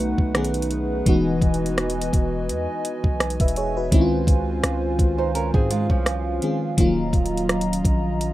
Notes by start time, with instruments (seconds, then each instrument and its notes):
Already playing: 808-style bass B1, fm electric piano D#3 A3 B3 C#4 F#4, analog synth pad A3 D#4 B4 F#5
0.18 808-style bass B1, kick
0.35 fm electric piano D#3 A3 B3 C#4 G#4, cross-stick, closed hi-hat
0.45 closed hi-hat
0.54 closed hi-hat
0.62 closed hi-hat
0.71 closed hi-hat
1.06 808-style bass E1, fm electric piano E3 G#3 B3 D#4 F#4, analog synth pad E3 D#5 G#5, kick, closed hi-hat
1.41 808-style bass E1, kick, closed hi-hat
1.54 closed hi-hat
1.66 closed hi-hat
1.78 cross-stick, closed hi-hat
1.90 closed hi-hat
2.02 closed hi-hat
2.13 808-style bass E1, kick, closed hi-hat
2.49 808-style bass E2, closed hi-hat
2.85 closed hi-hat
3.04 808-style bass B1, kick
3.20 cross-stick, closed hi-hat
3.30 closed hi-hat
3.40 808-style bass E1, fm electric piano B4 E5, kick, closed hi-hat
3.48 closed hi-hat
3.56 fm electric piano G#4 C#5, closed hi-hat
3.77 fm electric piano F#4 B4
3.91 808-style bass C#2, fm electric piano D#3 G#3 C4 C#4 E4, analog synth pad F4 C5 F5, kick, closed hi-hat
4.01 fm electric piano F4
4.27 808-style bass C#2, kick, closed hi-hat
4.64 808-style bass C#2, cross-stick, closed hi-hat
4.99 808-style bass C#2, kick, closed hi-hat
5.18 nylon-string guitar D#4 C5
5.35 nylon-string guitar C#4 A#4, closed hi-hat
5.54 808-style bass G#2, nylon-string guitar C4 G#4, kick
5.71 nylon-string guitar G#3 F4, closed hi-hat
5.90 808-style bass C2, nylon-string guitar F3 C#4, kick
6.06 cross-stick, closed hi-hat
6.42 fm electric piano D#3 G#3 C4 C#4 G#4, closed hi-hat
6.77 808-style bass D#1, fm electric piano D#3 F3 A#3 C#4 F4, analog synth pad F#3 D#5 A#5, kick, closed hi-hat
6.85 fm electric piano F#3
7.13 808-style bass D#1, kick, closed hi-hat
7.26 closed hi-hat
7.37 closed hi-hat
7.49 cross-stick, closed hi-hat
7.61 closed hi-hat
7.73 closed hi-hat
7.85 808-style bass A#1, kick, closed hi-hat
8.21 closed hi-hat